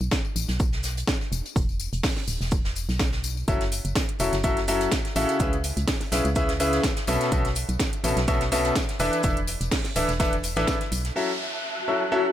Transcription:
0.01 fm bass B1, tambourine
0.11 kick, snare, tambourine, shaker
0.25 tambourine
0.36 fm bass A1, tambourine, shaker
0.48 fm bass B1, snare, tambourine
0.60 kick, tambourine, shaker
0.72 snare, tambourine
0.83 snare, tambourine, shaker
0.97 closed hi-hat, tambourine
1.07 kick, snare, tambourine, shaker
1.21 snare, tambourine
1.32 fm bass E1, tambourine, shaker
1.45 closed hi-hat, tambourine
1.56 fm bass E1, kick, tambourine, shaker
1.69 tambourine
1.80 tambourine, shaker
1.93 fm bass E1, closed hi-hat, tambourine
2.03 kick, snare, open hi-hat, tambourine
2.16 snare, tambourine
2.28 fm bass D1, tambourine, shaker
2.41 fm bass E1, snare, tambourine
2.51 kick, tambourine, shaker
2.65 snare, tambourine
2.76 tambourine, shaker
2.89 fm bass B1, snare, tambourine
2.99 kick, snare, tambourine, shaker
3.12 snare, tambourine
3.24 tambourine, shaker
3.37 tambourine
3.48 fm bass F#1, grand piano F#3 C#4 E4 F#4 A4 E5, kick, closed hi-hat, tambourine, shaker
3.60 snare, closed hi-hat, tambourine
3.72 open hi-hat, tambourine, shaker
3.85 fm bass F#1, closed hi-hat, tambourine
3.95 kick, snare, closed hi-hat, tambourine, shaker
4.09 closed hi-hat, tambourine
4.19 fm bass E1, grand piano F#3 C#4 E4 F#4 A4 E5, open hi-hat, tambourine, shaker
4.33 fm bass F#1, snare, closed hi-hat, tambourine
4.44 grand piano F#3 C#4 E4 F#4 A4 E5, kick, closed hi-hat, tambourine, shaker
4.57 snare, closed hi-hat, tambourine
4.68 grand piano F#3 C#4 E4 F#4 A4 E5, snare, open hi-hat, tambourine, shaker
4.81 closed hi-hat, tambourine
4.92 kick, snare, closed hi-hat, tambourine, shaker
5.05 snare, closed hi-hat, tambourine
5.16 fm bass A1, grand piano C#3 C#4 E4 F#4 A4 E5, open hi-hat, tambourine, shaker
5.29 closed hi-hat, tambourine
5.40 fm bass C#2, grand piano C#3 C#4 E4 G#4 B4 E5, kick, closed hi-hat, tambourine, shaker
5.53 closed hi-hat, tambourine
5.64 open hi-hat, tambourine, shaker
5.77 fm bass C#2, closed hi-hat, tambourine
5.88 kick, snare, closed hi-hat, open hi-hat, tambourine
6.00 snare, closed hi-hat, tambourine
6.12 fm bass B1, grand piano C#3 C#4 E4 G#4 B4 E5, snare, open hi-hat, tambourine, shaker
6.25 fm bass C#2, closed hi-hat, tambourine
6.36 grand piano C#3 C#4 E4 G#4 B4 E5, kick, closed hi-hat, tambourine, shaker
6.49 snare, closed hi-hat, tambourine
6.60 grand piano C#3 C#4 E4 G#4 B4 E5, open hi-hat, tambourine, shaker
6.73 snare, closed hi-hat, tambourine
6.83 kick, snare, closed hi-hat, tambourine, shaker
6.96 snare, closed hi-hat, tambourine
7.07 fm bass B1, grand piano B2 C#4 F#4 A4 B4 E5, open hi-hat, tambourine, shaker
7.21 snare, closed hi-hat, tambourine
7.32 fm bass B1, grand piano B2 C#4 F#4 A4 B4 E5, kick, closed hi-hat, tambourine, shaker
7.45 snare, closed hi-hat, tambourine
7.55 open hi-hat, tambourine, shaker
7.69 fm bass B1, closed hi-hat, tambourine
7.79 kick, snare, closed hi-hat, tambourine, shaker
7.93 closed hi-hat, tambourine
8.04 fm bass A1, grand piano B2 C#4 F#4 A4 B4 E5, open hi-hat, tambourine, shaker
8.16 fm bass B1, snare, closed hi-hat, tambourine
8.28 grand piano B2 C#4 F#4 A4 B4 E5, kick, closed hi-hat, tambourine, shaker
8.40 snare, closed hi-hat, tambourine
8.52 grand piano B2 C#4 F#4 A4 B4 E5, snare, open hi-hat, tambourine, shaker
8.65 closed hi-hat, tambourine
8.75 kick, snare, closed hi-hat, tambourine, shaker
8.89 snare, closed hi-hat, tambourine
8.99 fm bass E1, grand piano E3 D4 E4 A4 B4 E5, open hi-hat, tambourine, shaker
9.12 closed hi-hat, tambourine
9.23 fm bass E1, grand piano E3 D4 E4 A4 B4 E5, kick, closed hi-hat, tambourine, shaker
9.37 closed hi-hat, tambourine
9.47 open hi-hat, tambourine, shaker
9.61 fm bass E1, closed hi-hat, tambourine
9.71 kick, snare, closed hi-hat, open hi-hat, tambourine
9.84 snare, closed hi-hat, tambourine
9.96 fm bass D1, grand piano E3 D4 E4 A4 B4 E5, open hi-hat, tambourine, shaker
10.08 fm bass E1, snare, closed hi-hat, tambourine
10.20 grand piano E3 D4 E4 A4 B4 E5, kick, snare, closed hi-hat, tambourine, shaker
10.33 closed hi-hat, tambourine
10.43 open hi-hat, tambourine, shaker
10.56 fm bass A1, grand piano E3 D4 E4 A4 B4 E5, snare, closed hi-hat, tambourine
10.67 kick, snare, closed hi-hat, tambourine, shaker
10.81 snare, closed hi-hat, tambourine
10.92 fm bass B1, open hi-hat, tambourine, shaker
11.05 snare, closed hi-hat, tambourine
11.16 grand piano F#3 C#4 E4 F#4 A4 E5, ambient pad C#4, analog synth pad E5 A5 F#6, downlifter
11.28 ambient pad F#4
11.88 grand piano F#3 C#4 E4 F#4 A4 E5
12.12 grand piano F#3 C#4 E4 F#4 A4 E5

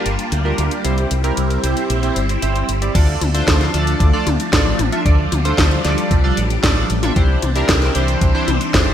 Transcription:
Already playing: string machine G3 A#3 D4 F4 A5
0.06 fingered electric bass G1, closed hi-hat
0.19 closed hi-hat
0.32 fingered electric bass D2, closed hi-hat
0.45 analog polysynth D4 F4 G4 A#4
0.58 fingered electric bass D2, closed hi-hat
0.71 closed hi-hat
0.84 fingered electric bass C2, analog polysynth C4 E4 G4 C5, string machine C4 E4, closed hi-hat
0.98 closed hi-hat
1.11 fingered electric bass C2, closed hi-hat
1.24 analog polysynth C4 E4 G4 A#4, closed hi-hat
1.37 fingered electric bass C2, closed hi-hat
1.50 closed hi-hat
1.63 fingered electric bass C2, analog polysynth C4 E4 G4 C5, closed hi-hat
1.77 closed hi-hat
1.90 fingered electric bass A#1, closed hi-hat
2.03 analog polysynth C4 E4 G4 C5, closed hi-hat
2.16 fingered electric bass G1, closed hi-hat
2.29 closed hi-hat
2.42 fingered electric bass G1, analog polysynth C4 E4 G4 C5, closed hi-hat
2.56 closed hi-hat
2.69 fingered electric bass G1, closed hi-hat
2.82 analog polysynth C4 E4 G4 D5, closed hi-hat
2.95 fingered electric bass D2, string machine F3 A3 D4, analog polysynth D4 F4 A4 D5, kick, closed hi-hat, crash
3.21 fingered electric bass D2, closed hi-hat, high tom
3.34 analog polysynth D4 F4 A4 C5, closed hi-hat
3.48 fingered electric bass D2, kick, snare, closed hi-hat
3.61 snare, closed hi-hat
3.74 fingered electric bass D2, analog polysynth D4 F4 A4 D5, closed hi-hat
3.87 closed hi-hat
4.00 fingered electric bass D2, kick, closed hi-hat
4.13 analog polysynth D4 F4 A4 D5
4.27 fingered electric bass D2, closed hi-hat, high tom
4.40 closed hi-hat
4.53 fingered electric bass A1, analog polysynth D4 F4 A4 D5, kick, snare, closed hi-hat
4.79 fingered electric bass A1, closed hi-hat, high tom
4.92 analog polysynth D4 F4 A4 E5, closed hi-hat
5.05 fingered electric bass D2, string machine G3, analog polysynth D4 F4 A4 D5, kick, closed hi-hat
5.32 fingered electric bass D2, closed hi-hat, high tom
5.45 analog polysynth D4 F4 A4 C5, closed hi-hat
5.58 fingered electric bass D2, kick, snare, closed hi-hat
5.71 closed hi-hat
5.84 fingered electric bass D2, analog polysynth D4 F4 A4 D5, snare, closed hi-hat
5.98 closed hi-hat
6.11 fingered electric bass C2, kick, closed hi-hat
6.24 analog polysynth D4 F4 A4 D5
6.37 fingered electric bass A1, closed hi-hat
6.50 closed hi-hat
6.63 fingered electric bass A1, analog polysynth D4 F4 A4 D5, kick, snare, closed hi-hat
6.90 fingered electric bass A1, closed hi-hat
7.03 analog polysynth D4 F4 A4 E5, closed hi-hat, high tom
7.16 fingered electric bass C2, string machine E3 C4, analog polysynth D4 E4 G4 C5, kick, closed hi-hat
7.42 fingered electric bass C2, closed hi-hat, high tom
7.56 analog polysynth D4 E4 G4 A#4, closed hi-hat
7.69 fingered electric bass C2, kick, snare, closed hi-hat
7.82 snare, closed hi-hat
7.95 fingered electric bass C2, analog polysynth D4 E4 G4 C5, closed hi-hat
8.08 closed hi-hat
8.21 fingered electric bass C2, kick, closed hi-hat
8.35 analog polysynth D4 E4 G4 C5
8.48 fingered electric bass C2, closed hi-hat, high tom
8.61 closed hi-hat
8.74 fingered electric bass G1, analog polysynth D4 E4 G4 C5, kick, snare, closed hi-hat

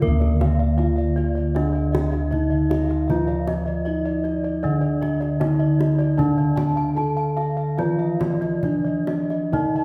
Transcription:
Already playing: kettle gongs D3
0.00 bronze metallophone A#3 A#4, kettle gongs A#4 F5, kendang low
0.07 kettle gongs D2
0.20 bronze metallophone A#4, kettle gongs D5, kendang slap
0.40 kettle gongs F5, bronze metallophone F5, kendang slap, kendang high, kendang low
0.59 kettle gongs D5, bronze metallophone F5
0.77 kettle gongs D#4 F5, bronze metallophone F4 F5, kendang slap
0.96 kettle gongs D5, bronze metallophone F5
1.16 bronze metallophone D5, kettle gongs F5, kendang slap
1.35 bronze metallophone D5, kettle gongs D5
1.55 bronze metallophone D3 D4 D5, kettle gongs D#5, kendang high
1.73 bronze metallophone D5, kettle gongs F5
1.92 bronze metallophone D#5, kettle gongs D#5, kendang slap, kendang high, kendang low
2.11 bronze metallophone D#5, kettle gongs F5, kendang slap
2.31 bronze metallophone D#4 D#5, kettle gongs D#4 D#5, kendang slap, kendang low
2.50 bronze metallophone D#5, kettle gongs F5
2.70 kettle gongs D#5, bronze metallophone F5, kendang slap, kendang high
2.88 bronze metallophone F5, kettle gongs F5, kendang slap
3.08 bronze metallophone F3 F4 F5, kettle gongs F4 D#5, kendang low
3.27 kettle gongs D5, bronze metallophone F5, kendang slap
3.47 bronze metallophone D#5, kettle gongs D#5, kendang slap, kendang high, kendang low
3.66 kettle gongs D5, bronze metallophone D#5
3.85 kettle gongs D#4 D#5, bronze metallophone D#4 D#5, kendang slap
4.05 kettle gongs D5, bronze metallophone D#5
4.24 bronze metallophone D5, kettle gongs D#5, kendang slap
4.44 kettle gongs D5, bronze metallophone D5
4.63 bronze metallophone D3 D4 D5, kettle gongs D3 D#5
4.81 kettle gongs D5, bronze metallophone D5
5.01 bronze metallophone D#5, kettle gongs D#5, kendang slap, kendang low
5.20 kettle gongs D5, bronze metallophone D#5, kendang slap
5.40 bronze metallophone D#4 D#5, kettle gongs D#4 D#5, kendang slap, kendang high, kendang low
5.59 kettle gongs D5, bronze metallophone D#5
5.79 bronze metallophone D5, kettle gongs D#5, kendang slap, kendang high
5.99 bronze metallophone D5, kettle gongs D5, kendang slap
6.17 bronze metallophone D3 D4 D5, kettle gongs D4 A5, kendang low
6.38 bronze metallophone D5, kettle gongs F5
6.56 kettle gongs A5, bronze metallophone A5, kendang slap, kendang high, kendang low
6.76 kettle gongs F5, bronze metallophone A5
6.95 kettle gongs D#4 A5, bronze metallophone A4 A5, kendang slap
7.17 kettle gongs F5, bronze metallophone A5
7.37 bronze metallophone F5, kettle gongs A5, kendang slap
7.57 bronze metallophone F5, kettle gongs F5
7.78 kettle gongs D#3 D5, bronze metallophone F3 F4 F5, kendang high
7.99 kettle gongs D#5, bronze metallophone F5
8.20 kettle gongs D5, bronze metallophone D5, kendang slap, kendang high, kendang low
8.41 bronze metallophone D5, kettle gongs D#5, kendang slap
8.63 bronze metallophone D4 D5, kettle gongs D#4 D5, kendang slap, kendang low
8.85 bronze metallophone D5, kettle gongs D#5
9.07 kettle gongs D5, bronze metallophone D#5, kendang slap, kendang high
9.30 bronze metallophone D#5, kettle gongs D#5, kendang slap
9.53 bronze metallophone D#3 D#4 D#5, kettle gongs D#4 D5, kendang low
9.76 bronze metallophone D#5, kettle gongs A5

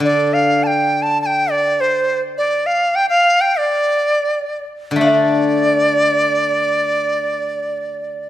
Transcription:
0.00 guzheng D3
0.05 dizi D5
0.33 dizi F5
0.63 dizi G5 A5
1.02 dizi A5
1.22 dizi A5
1.26 dizi G5
1.51 dizi D5
1.81 dizi C5
2.38 dizi D5
2.66 dizi F5
2.95 dizi G5
3.09 dizi F5
3.41 dizi G5
3.58 dizi D5
4.91 guzheng D3
4.96 guzheng A3
5.01 guzheng D4, dizi F5
5.08 dizi D5

